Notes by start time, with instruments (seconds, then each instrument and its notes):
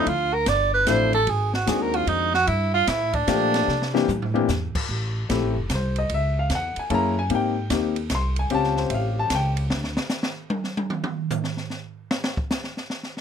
0.07 upright bass D2, tenor saxophone F4, kick, ride
0.33 tenor saxophone A#4
0.46 upright bass G1, tenor saxophone D5, kick, snare, hi-hat pedal, ride
0.74 tenor saxophone B4
0.87 upright bass A1, grand piano F3 A3 C4 D4 E4, tenor saxophone C5, kick, snare, hi-hat pedal, ride
1.13 tenor saxophone A4, ride
1.27 upright bass G#1, tenor saxophone G#4, kick, ride
1.54 tenor saxophone F#4, snare
1.66 upright bass D#2, grand piano D#3 G#3 C4 D4 F#4, tenor saxophone G#4, kick, snare, hi-hat pedal, ride
1.82 tenor saxophone A#4
1.94 tenor saxophone F4, ride
2.07 upright bass F2, tenor saxophone D#4, kick, ride
2.34 tenor saxophone F#4, snare
2.47 upright bass G2, tenor saxophone E4, kick, ride
2.74 tenor saxophone F4
2.87 upright bass A2, tenor saxophone E4, kick, snare, hi-hat pedal, ride
3.13 tenor saxophone D4, kick, ride
3.27 upright bass A#2, grand piano F3 A3 A#3 D4 G4, kick, snare, hi-hat pedal, ride
3.54 snare, ride
3.68 upright bass C3, snare
3.82 snare
3.94 grand piano E3 A#3 C4 D4 G4, snare
4.08 upright bass A2, hi-hat pedal, high tom
4.22 floor tom
4.34 grand piano E3 A#3 C4 D4 G4, floor tom
4.49 upright bass E2, snare, hi-hat pedal
4.75 muted upright bass stroke, kick, crash
4.89 upright bass A1, kick
5.29 upright bass A#1, grand piano A3 C4 E4 G4, kick, snare, hi-hat pedal, ride
5.43 upright bass A1
5.56 upright bass F1
5.69 upright bass C2, kick, snare, hi-hat pedal, ride
5.75 grand piano C5
5.96 grand piano D#5, ride
6.09 upright bass C#2, kick, ride
6.14 grand piano E5
6.39 grand piano F5
6.50 upright bass E2, kick, snare, hi-hat pedal, ride
6.55 grand piano F#5
6.76 grand piano G#5, muted upright bass stroke, ride
6.90 upright bass F#2, grand piano A#3 C#4 E4 G#4 A5, kick, ride
6.94 grand piano A#5
7.19 grand piano G#5
7.30 upright bass G#2, grand piano A#3 C4 D#4 G4, kick, ride
7.35 grand piano G5
7.70 upright bass D#2, grand piano A#3 C4 D#4 G4, kick, snare, hi-hat pedal, ride
7.96 ride
8.10 upright bass C2, kick, snare, hi-hat pedal, ride
8.15 grand piano C6
8.36 grand piano G#5, ride
8.50 upright bass C#2, grand piano C4 C#4 F4 G4, kick, ride
8.54 grand piano A5
8.64 snare
8.77 grand piano C5, snare
8.90 upright bass A1, grand piano E5, kick, ride
8.94 grand piano F5
9.19 grand piano A5
9.30 upright bass C#2, kick, snare, hi-hat pedal, ride
9.35 grand piano G5
9.57 ride
9.70 upright bass D2, snare
9.84 snare
9.97 snare
10.09 snare, hi-hat pedal
10.23 snare
10.50 high tom
10.64 snare
10.77 high tom
10.90 mid tom
11.04 mid tom
11.30 floor tom, hi-hat pedal
11.44 snare
11.57 snare
11.70 snare
12.11 snare
12.24 snare
12.37 kick
12.51 snare, hi-hat pedal
12.64 snare
12.77 snare
12.90 snare
13.03 snare
13.17 snare